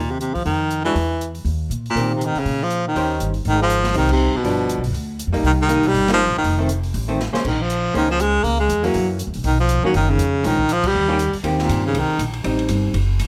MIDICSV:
0, 0, Header, 1, 6, 480
1, 0, Start_track
1, 0, Key_signature, -3, "major"
1, 0, Tempo, 249792
1, 872, Time_signature, 4, 2, 24, 8
1, 6635, Key_signature, -4, "major"
1, 25500, End_track
2, 0, Start_track
2, 0, Title_t, "Hollow-body jazz guitar"
2, 0, Program_c, 0, 26
2, 1623, Note_on_c, 0, 52, 54
2, 1626, Note_on_c, 0, 56, 59
2, 1644, Note_on_c, 0, 62, 56
2, 1653, Note_on_c, 0, 66, 61
2, 1810, Note_off_c, 0, 52, 0
2, 1811, Note_off_c, 0, 56, 0
2, 1821, Note_off_c, 0, 62, 0
2, 1825, Note_off_c, 0, 66, 0
2, 3755, Note_on_c, 0, 51, 46
2, 3772, Note_on_c, 0, 58, 50
2, 3776, Note_on_c, 0, 60, 54
2, 3784, Note_on_c, 0, 67, 53
2, 4455, Note_off_c, 0, 51, 0
2, 4464, Note_off_c, 0, 58, 0
2, 4466, Note_off_c, 0, 60, 0
2, 4470, Note_off_c, 0, 67, 0
2, 5680, Note_on_c, 0, 51, 46
2, 5688, Note_on_c, 0, 61, 48
2, 5697, Note_on_c, 0, 72, 48
2, 5701, Note_on_c, 0, 67, 52
2, 6378, Note_off_c, 0, 51, 0
2, 6383, Note_off_c, 0, 61, 0
2, 6387, Note_off_c, 0, 72, 0
2, 6389, Note_off_c, 0, 67, 0
2, 7572, Note_on_c, 0, 55, 57
2, 7579, Note_on_c, 0, 60, 54
2, 7598, Note_on_c, 0, 63, 58
2, 8284, Note_off_c, 0, 55, 0
2, 8288, Note_off_c, 0, 60, 0
2, 8297, Note_off_c, 0, 63, 0
2, 8525, Note_on_c, 0, 53, 55
2, 8536, Note_on_c, 0, 59, 58
2, 8556, Note_on_c, 0, 62, 63
2, 9241, Note_off_c, 0, 53, 0
2, 9246, Note_off_c, 0, 59, 0
2, 9256, Note_off_c, 0, 62, 0
2, 10234, Note_on_c, 0, 55, 64
2, 10246, Note_on_c, 0, 58, 71
2, 10255, Note_on_c, 0, 63, 65
2, 10891, Note_off_c, 0, 55, 0
2, 10901, Note_off_c, 0, 58, 0
2, 10906, Note_off_c, 0, 63, 0
2, 10914, Note_on_c, 0, 55, 59
2, 10930, Note_on_c, 0, 58, 67
2, 10956, Note_on_c, 0, 63, 63
2, 11635, Note_off_c, 0, 55, 0
2, 11643, Note_off_c, 0, 58, 0
2, 11656, Note_off_c, 0, 63, 0
2, 11690, Note_on_c, 0, 55, 69
2, 11706, Note_on_c, 0, 58, 71
2, 11707, Note_on_c, 0, 63, 70
2, 11884, Note_off_c, 0, 55, 0
2, 11892, Note_off_c, 0, 58, 0
2, 11893, Note_off_c, 0, 63, 0
2, 12644, Note_on_c, 0, 51, 58
2, 12654, Note_on_c, 0, 57, 59
2, 12665, Note_on_c, 0, 60, 57
2, 12841, Note_off_c, 0, 51, 0
2, 12846, Note_off_c, 0, 57, 0
2, 12852, Note_off_c, 0, 60, 0
2, 13607, Note_on_c, 0, 51, 60
2, 13616, Note_on_c, 0, 57, 61
2, 13621, Note_on_c, 0, 60, 64
2, 13802, Note_off_c, 0, 51, 0
2, 13807, Note_off_c, 0, 57, 0
2, 13810, Note_off_c, 0, 60, 0
2, 14080, Note_on_c, 0, 58, 60
2, 14088, Note_on_c, 0, 61, 62
2, 14093, Note_on_c, 0, 68, 60
2, 14097, Note_on_c, 0, 72, 63
2, 14279, Note_off_c, 0, 58, 0
2, 14283, Note_off_c, 0, 61, 0
2, 14286, Note_off_c, 0, 68, 0
2, 14288, Note_off_c, 0, 72, 0
2, 15262, Note_on_c, 0, 58, 55
2, 15262, Note_on_c, 0, 61, 58
2, 15270, Note_on_c, 0, 68, 56
2, 15282, Note_on_c, 0, 72, 58
2, 15969, Note_off_c, 0, 58, 0
2, 15969, Note_off_c, 0, 61, 0
2, 15973, Note_off_c, 0, 68, 0
2, 15979, Note_off_c, 0, 72, 0
2, 16964, Note_on_c, 0, 52, 62
2, 16980, Note_on_c, 0, 58, 73
2, 17005, Note_on_c, 0, 61, 66
2, 17620, Note_off_c, 0, 52, 0
2, 17628, Note_off_c, 0, 58, 0
2, 17641, Note_off_c, 0, 61, 0
2, 18899, Note_on_c, 0, 51, 67
2, 18907, Note_on_c, 0, 58, 69
2, 18910, Note_on_c, 0, 61, 74
2, 19547, Note_off_c, 0, 51, 0
2, 19551, Note_off_c, 0, 58, 0
2, 19553, Note_off_c, 0, 61, 0
2, 20042, Note_on_c, 0, 53, 53
2, 20063, Note_on_c, 0, 56, 59
2, 20070, Note_on_c, 0, 61, 63
2, 20306, Note_off_c, 0, 53, 0
2, 20316, Note_off_c, 0, 56, 0
2, 20320, Note_off_c, 0, 61, 0
2, 21292, Note_on_c, 0, 51, 57
2, 21307, Note_on_c, 0, 58, 56
2, 21307, Note_on_c, 0, 67, 68
2, 21309, Note_on_c, 0, 61, 66
2, 21484, Note_off_c, 0, 51, 0
2, 21492, Note_off_c, 0, 58, 0
2, 21492, Note_off_c, 0, 67, 0
2, 21493, Note_off_c, 0, 61, 0
2, 21970, Note_on_c, 0, 51, 51
2, 21988, Note_on_c, 0, 60, 49
2, 21992, Note_on_c, 0, 58, 49
2, 22001, Note_on_c, 0, 67, 56
2, 23300, Note_off_c, 0, 51, 0
2, 23309, Note_off_c, 0, 60, 0
2, 23311, Note_off_c, 0, 58, 0
2, 23316, Note_off_c, 0, 67, 0
2, 23900, Note_on_c, 0, 55, 49
2, 23911, Note_on_c, 0, 60, 53
2, 23923, Note_on_c, 0, 63, 56
2, 24868, Note_off_c, 0, 55, 0
2, 24873, Note_off_c, 0, 60, 0
2, 24879, Note_off_c, 0, 63, 0
2, 25500, End_track
3, 0, Start_track
3, 0, Title_t, "Baritone saxophone"
3, 0, Program_c, 1, 67
3, 0, Note_on_c, 1, 46, 74
3, 202, Note_on_c, 1, 48, 72
3, 231, Note_off_c, 1, 46, 0
3, 370, Note_off_c, 1, 48, 0
3, 382, Note_on_c, 1, 48, 75
3, 659, Note_on_c, 1, 53, 73
3, 687, Note_off_c, 1, 48, 0
3, 856, Note_off_c, 1, 53, 0
3, 867, Note_on_c, 1, 51, 78
3, 1573, Note_off_c, 1, 51, 0
3, 1624, Note_on_c, 1, 52, 76
3, 2519, Note_off_c, 1, 52, 0
3, 3646, Note_on_c, 1, 46, 69
3, 4048, Note_off_c, 1, 46, 0
3, 4122, Note_on_c, 1, 48, 71
3, 4337, Note_on_c, 1, 51, 77
3, 4366, Note_off_c, 1, 48, 0
3, 4592, Note_on_c, 1, 49, 75
3, 4621, Note_off_c, 1, 51, 0
3, 5061, Note_on_c, 1, 53, 84
3, 5090, Note_off_c, 1, 49, 0
3, 5506, Note_off_c, 1, 53, 0
3, 5520, Note_on_c, 1, 51, 74
3, 6390, Note_off_c, 1, 51, 0
3, 6697, Note_on_c, 1, 51, 89
3, 6925, Note_off_c, 1, 51, 0
3, 6952, Note_on_c, 1, 53, 92
3, 7569, Note_off_c, 1, 53, 0
3, 7635, Note_on_c, 1, 51, 89
3, 7873, Note_off_c, 1, 51, 0
3, 7925, Note_on_c, 1, 48, 86
3, 8389, Note_on_c, 1, 47, 75
3, 8418, Note_off_c, 1, 48, 0
3, 9330, Note_off_c, 1, 47, 0
3, 10492, Note_on_c, 1, 51, 80
3, 10612, Note_off_c, 1, 51, 0
3, 10796, Note_on_c, 1, 51, 82
3, 11296, Note_on_c, 1, 55, 99
3, 11325, Note_off_c, 1, 51, 0
3, 11743, Note_off_c, 1, 55, 0
3, 11787, Note_on_c, 1, 53, 96
3, 12198, Note_off_c, 1, 53, 0
3, 12256, Note_on_c, 1, 51, 77
3, 12672, Note_off_c, 1, 51, 0
3, 14350, Note_on_c, 1, 51, 71
3, 14632, Note_on_c, 1, 53, 79
3, 14661, Note_off_c, 1, 51, 0
3, 15296, Note_off_c, 1, 53, 0
3, 15306, Note_on_c, 1, 51, 86
3, 15548, Note_off_c, 1, 51, 0
3, 15572, Note_on_c, 1, 53, 84
3, 15770, Note_on_c, 1, 56, 92
3, 15799, Note_off_c, 1, 53, 0
3, 16220, Note_on_c, 1, 58, 94
3, 16249, Note_off_c, 1, 56, 0
3, 16503, Note_off_c, 1, 58, 0
3, 16519, Note_on_c, 1, 56, 84
3, 16998, Note_on_c, 1, 54, 87
3, 17027, Note_off_c, 1, 56, 0
3, 17474, Note_off_c, 1, 54, 0
3, 18174, Note_on_c, 1, 51, 80
3, 18421, Note_off_c, 1, 51, 0
3, 18442, Note_on_c, 1, 53, 82
3, 18883, Note_off_c, 1, 53, 0
3, 18928, Note_on_c, 1, 54, 84
3, 19109, Note_off_c, 1, 54, 0
3, 19130, Note_on_c, 1, 51, 87
3, 19414, Note_on_c, 1, 49, 92
3, 19443, Note_off_c, 1, 51, 0
3, 20108, Note_on_c, 1, 51, 91
3, 20136, Note_off_c, 1, 49, 0
3, 20610, Note_on_c, 1, 53, 93
3, 20639, Note_off_c, 1, 51, 0
3, 20883, Note_on_c, 1, 55, 96
3, 20911, Note_off_c, 1, 53, 0
3, 21816, Note_off_c, 1, 55, 0
3, 22332, Note_on_c, 1, 46, 74
3, 22749, Note_off_c, 1, 46, 0
3, 22793, Note_on_c, 1, 49, 84
3, 23044, Note_on_c, 1, 51, 88
3, 23073, Note_off_c, 1, 49, 0
3, 23479, Note_off_c, 1, 51, 0
3, 25500, End_track
4, 0, Start_track
4, 0, Title_t, "Upright bass"
4, 0, Program_c, 2, 32
4, 0, Note_on_c, 2, 39, 72
4, 815, Note_off_c, 2, 39, 0
4, 876, Note_on_c, 2, 41, 68
4, 1787, Note_off_c, 2, 41, 0
4, 1821, Note_on_c, 2, 40, 69
4, 2739, Note_off_c, 2, 40, 0
4, 2778, Note_on_c, 2, 39, 73
4, 3232, Note_off_c, 2, 39, 0
4, 3262, Note_on_c, 2, 46, 66
4, 3714, Note_off_c, 2, 46, 0
4, 3748, Note_on_c, 2, 46, 74
4, 4454, Note_off_c, 2, 46, 0
4, 4712, Note_on_c, 2, 46, 72
4, 5626, Note_off_c, 2, 46, 0
4, 5677, Note_on_c, 2, 39, 73
4, 6122, Note_off_c, 2, 39, 0
4, 6155, Note_on_c, 2, 31, 65
4, 6601, Note_off_c, 2, 31, 0
4, 6633, Note_on_c, 2, 32, 80
4, 7546, Note_off_c, 2, 32, 0
4, 7597, Note_on_c, 2, 36, 83
4, 8299, Note_off_c, 2, 36, 0
4, 8543, Note_on_c, 2, 31, 75
4, 9144, Note_off_c, 2, 31, 0
4, 9183, Note_on_c, 2, 35, 60
4, 9322, Note_off_c, 2, 35, 0
4, 9334, Note_on_c, 2, 30, 64
4, 9461, Note_off_c, 2, 30, 0
4, 9472, Note_on_c, 2, 38, 79
4, 10087, Note_off_c, 2, 38, 0
4, 10129, Note_on_c, 2, 41, 58
4, 10272, Note_off_c, 2, 41, 0
4, 10283, Note_on_c, 2, 37, 64
4, 10425, Note_off_c, 2, 37, 0
4, 10436, Note_on_c, 2, 36, 83
4, 11157, Note_off_c, 2, 36, 0
4, 11200, Note_on_c, 2, 35, 66
4, 11383, Note_off_c, 2, 35, 0
4, 11395, Note_on_c, 2, 31, 79
4, 12009, Note_off_c, 2, 31, 0
4, 12046, Note_on_c, 2, 34, 60
4, 12199, Note_off_c, 2, 34, 0
4, 12210, Note_on_c, 2, 30, 62
4, 12358, Note_off_c, 2, 30, 0
4, 12369, Note_on_c, 2, 29, 79
4, 13293, Note_off_c, 2, 29, 0
4, 13338, Note_on_c, 2, 33, 81
4, 14049, Note_off_c, 2, 33, 0
4, 14313, Note_on_c, 2, 34, 76
4, 15226, Note_off_c, 2, 34, 0
4, 15263, Note_on_c, 2, 37, 80
4, 16181, Note_off_c, 2, 37, 0
4, 16214, Note_on_c, 2, 37, 80
4, 16670, Note_off_c, 2, 37, 0
4, 16700, Note_on_c, 2, 40, 76
4, 17153, Note_off_c, 2, 40, 0
4, 17188, Note_on_c, 2, 42, 83
4, 17786, Note_off_c, 2, 42, 0
4, 17812, Note_on_c, 2, 40, 62
4, 17963, Note_off_c, 2, 40, 0
4, 17974, Note_on_c, 2, 34, 66
4, 18128, Note_off_c, 2, 34, 0
4, 18139, Note_on_c, 2, 35, 87
4, 18849, Note_off_c, 2, 35, 0
4, 19106, Note_on_c, 2, 30, 85
4, 19556, Note_off_c, 2, 30, 0
4, 19571, Note_on_c, 2, 41, 77
4, 20028, Note_off_c, 2, 41, 0
4, 20063, Note_on_c, 2, 34, 81
4, 20980, Note_off_c, 2, 34, 0
4, 21042, Note_on_c, 2, 39, 85
4, 21741, Note_off_c, 2, 39, 0
4, 21975, Note_on_c, 2, 39, 75
4, 22450, Note_off_c, 2, 39, 0
4, 22462, Note_on_c, 2, 43, 84
4, 22929, Note_off_c, 2, 43, 0
4, 22941, Note_on_c, 2, 36, 74
4, 23203, Note_off_c, 2, 36, 0
4, 23421, Note_on_c, 2, 34, 83
4, 23893, Note_off_c, 2, 34, 0
4, 23913, Note_on_c, 2, 33, 75
4, 24380, Note_off_c, 2, 33, 0
4, 24390, Note_on_c, 2, 31, 86
4, 24852, Note_off_c, 2, 31, 0
4, 24863, Note_on_c, 2, 30, 79
4, 25335, Note_off_c, 2, 30, 0
4, 25359, Note_on_c, 2, 33, 78
4, 25500, Note_off_c, 2, 33, 0
4, 25500, End_track
5, 0, Start_track
5, 0, Title_t, "Muted upright bass strokes"
5, 4520, Note_on_c, 9, 29, 33
5, 4712, Note_off_c, 9, 29, 0
5, 8343, Note_on_c, 9, 29, 37
5, 8535, Note_off_c, 9, 29, 0
5, 14106, Note_on_c, 9, 29, 35
5, 14298, Note_off_c, 9, 29, 0
5, 18891, Note_on_c, 9, 29, 39
5, 19083, Note_off_c, 9, 29, 0
5, 21788, Note_on_c, 9, 29, 35
5, 21981, Note_off_c, 9, 29, 0
5, 25500, End_track
6, 0, Start_track
6, 0, Title_t, "Drums"
6, 397, Note_on_c, 9, 42, 42
6, 589, Note_off_c, 9, 42, 0
6, 679, Note_on_c, 9, 36, 43
6, 680, Note_on_c, 9, 46, 29
6, 871, Note_off_c, 9, 36, 0
6, 872, Note_off_c, 9, 46, 0
6, 875, Note_on_c, 9, 46, 35
6, 1067, Note_off_c, 9, 46, 0
6, 1355, Note_on_c, 9, 42, 41
6, 1547, Note_off_c, 9, 42, 0
6, 1644, Note_on_c, 9, 46, 28
6, 1836, Note_off_c, 9, 46, 0
6, 1839, Note_on_c, 9, 46, 36
6, 2031, Note_off_c, 9, 46, 0
6, 2328, Note_on_c, 9, 42, 43
6, 2520, Note_off_c, 9, 42, 0
6, 2589, Note_on_c, 9, 46, 30
6, 2782, Note_off_c, 9, 46, 0
6, 2796, Note_on_c, 9, 46, 34
6, 2988, Note_off_c, 9, 46, 0
6, 3284, Note_on_c, 9, 42, 41
6, 3476, Note_off_c, 9, 42, 0
6, 3569, Note_on_c, 9, 46, 30
6, 3762, Note_off_c, 9, 46, 0
6, 3779, Note_on_c, 9, 46, 35
6, 3971, Note_off_c, 9, 46, 0
6, 4250, Note_on_c, 9, 42, 43
6, 4442, Note_off_c, 9, 42, 0
6, 4523, Note_on_c, 9, 46, 30
6, 4715, Note_off_c, 9, 46, 0
6, 4723, Note_on_c, 9, 46, 36
6, 4915, Note_off_c, 9, 46, 0
6, 5196, Note_on_c, 9, 42, 41
6, 5388, Note_off_c, 9, 42, 0
6, 5683, Note_on_c, 9, 46, 35
6, 5875, Note_off_c, 9, 46, 0
6, 6152, Note_on_c, 9, 42, 45
6, 6345, Note_off_c, 9, 42, 0
6, 6415, Note_on_c, 9, 46, 30
6, 6607, Note_off_c, 9, 46, 0
6, 6628, Note_on_c, 9, 46, 42
6, 6820, Note_off_c, 9, 46, 0
6, 7107, Note_on_c, 9, 42, 53
6, 7299, Note_off_c, 9, 42, 0
6, 7378, Note_on_c, 9, 38, 47
6, 7571, Note_off_c, 9, 38, 0
6, 7574, Note_on_c, 9, 46, 43
6, 7767, Note_off_c, 9, 46, 0
6, 7858, Note_on_c, 9, 49, 66
6, 7864, Note_on_c, 9, 36, 75
6, 8050, Note_off_c, 9, 49, 0
6, 8056, Note_off_c, 9, 36, 0
6, 8542, Note_on_c, 9, 46, 43
6, 8734, Note_off_c, 9, 46, 0
6, 9019, Note_on_c, 9, 42, 52
6, 9211, Note_off_c, 9, 42, 0
6, 9298, Note_on_c, 9, 46, 36
6, 9490, Note_off_c, 9, 46, 0
6, 9501, Note_on_c, 9, 46, 45
6, 9693, Note_off_c, 9, 46, 0
6, 9980, Note_on_c, 9, 42, 52
6, 10172, Note_off_c, 9, 42, 0
6, 10263, Note_on_c, 9, 46, 36
6, 10455, Note_off_c, 9, 46, 0
6, 10464, Note_on_c, 9, 46, 40
6, 10656, Note_off_c, 9, 46, 0
6, 10936, Note_on_c, 9, 42, 51
6, 11128, Note_off_c, 9, 42, 0
6, 11206, Note_on_c, 9, 46, 34
6, 11399, Note_off_c, 9, 46, 0
6, 11423, Note_on_c, 9, 46, 45
6, 11615, Note_off_c, 9, 46, 0
6, 11687, Note_on_c, 9, 51, 60
6, 11694, Note_on_c, 9, 38, 76
6, 11879, Note_off_c, 9, 51, 0
6, 11887, Note_off_c, 9, 38, 0
6, 12379, Note_on_c, 9, 46, 43
6, 12571, Note_off_c, 9, 46, 0
6, 12854, Note_on_c, 9, 42, 53
6, 13046, Note_off_c, 9, 42, 0
6, 13132, Note_on_c, 9, 46, 35
6, 13324, Note_off_c, 9, 46, 0
6, 13338, Note_on_c, 9, 46, 45
6, 13531, Note_off_c, 9, 46, 0
6, 13831, Note_on_c, 9, 38, 46
6, 14024, Note_off_c, 9, 38, 0
6, 14107, Note_on_c, 9, 38, 60
6, 14300, Note_off_c, 9, 38, 0
6, 14310, Note_on_c, 9, 49, 70
6, 14314, Note_on_c, 9, 36, 68
6, 14502, Note_off_c, 9, 49, 0
6, 14506, Note_off_c, 9, 36, 0
6, 14792, Note_on_c, 9, 42, 53
6, 14984, Note_off_c, 9, 42, 0
6, 15279, Note_on_c, 9, 46, 44
6, 15471, Note_off_c, 9, 46, 0
6, 15752, Note_on_c, 9, 42, 54
6, 15944, Note_off_c, 9, 42, 0
6, 16223, Note_on_c, 9, 46, 44
6, 16415, Note_off_c, 9, 46, 0
6, 16710, Note_on_c, 9, 42, 55
6, 16902, Note_off_c, 9, 42, 0
6, 16981, Note_on_c, 9, 46, 37
6, 17174, Note_off_c, 9, 46, 0
6, 17177, Note_on_c, 9, 46, 45
6, 17369, Note_off_c, 9, 46, 0
6, 17663, Note_on_c, 9, 42, 57
6, 17855, Note_off_c, 9, 42, 0
6, 17943, Note_on_c, 9, 46, 39
6, 18135, Note_off_c, 9, 46, 0
6, 18139, Note_on_c, 9, 46, 43
6, 18331, Note_off_c, 9, 46, 0
6, 18617, Note_on_c, 9, 42, 55
6, 18809, Note_off_c, 9, 42, 0
6, 19102, Note_on_c, 9, 46, 46
6, 19294, Note_off_c, 9, 46, 0
6, 19581, Note_on_c, 9, 42, 56
6, 19774, Note_off_c, 9, 42, 0
6, 20066, Note_on_c, 9, 46, 46
6, 20258, Note_off_c, 9, 46, 0
6, 20347, Note_on_c, 9, 36, 55
6, 20539, Note_off_c, 9, 36, 0
6, 20539, Note_on_c, 9, 42, 54
6, 20732, Note_off_c, 9, 42, 0
6, 20822, Note_on_c, 9, 49, 68
6, 20826, Note_on_c, 9, 36, 78
6, 21014, Note_off_c, 9, 49, 0
6, 21018, Note_off_c, 9, 36, 0
6, 21506, Note_on_c, 9, 42, 53
6, 21698, Note_off_c, 9, 42, 0
6, 21777, Note_on_c, 9, 46, 38
6, 21969, Note_off_c, 9, 46, 0
6, 21980, Note_on_c, 9, 51, 52
6, 22172, Note_off_c, 9, 51, 0
6, 22269, Note_on_c, 9, 38, 40
6, 22461, Note_off_c, 9, 38, 0
6, 22469, Note_on_c, 9, 44, 52
6, 22469, Note_on_c, 9, 51, 55
6, 22661, Note_off_c, 9, 44, 0
6, 22661, Note_off_c, 9, 51, 0
6, 22955, Note_on_c, 9, 51, 55
6, 23147, Note_off_c, 9, 51, 0
6, 23429, Note_on_c, 9, 44, 49
6, 23429, Note_on_c, 9, 51, 57
6, 23621, Note_off_c, 9, 44, 0
6, 23621, Note_off_c, 9, 51, 0
6, 23703, Note_on_c, 9, 51, 41
6, 23895, Note_off_c, 9, 51, 0
6, 23910, Note_on_c, 9, 51, 55
6, 24102, Note_off_c, 9, 51, 0
6, 24189, Note_on_c, 9, 51, 42
6, 24377, Note_off_c, 9, 51, 0
6, 24377, Note_on_c, 9, 44, 48
6, 24377, Note_on_c, 9, 51, 55
6, 24569, Note_off_c, 9, 44, 0
6, 24569, Note_off_c, 9, 51, 0
6, 24867, Note_on_c, 9, 51, 56
6, 25059, Note_off_c, 9, 51, 0
6, 25354, Note_on_c, 9, 44, 50
6, 25354, Note_on_c, 9, 51, 62
6, 25500, Note_off_c, 9, 44, 0
6, 25500, Note_off_c, 9, 51, 0
6, 25500, End_track
0, 0, End_of_file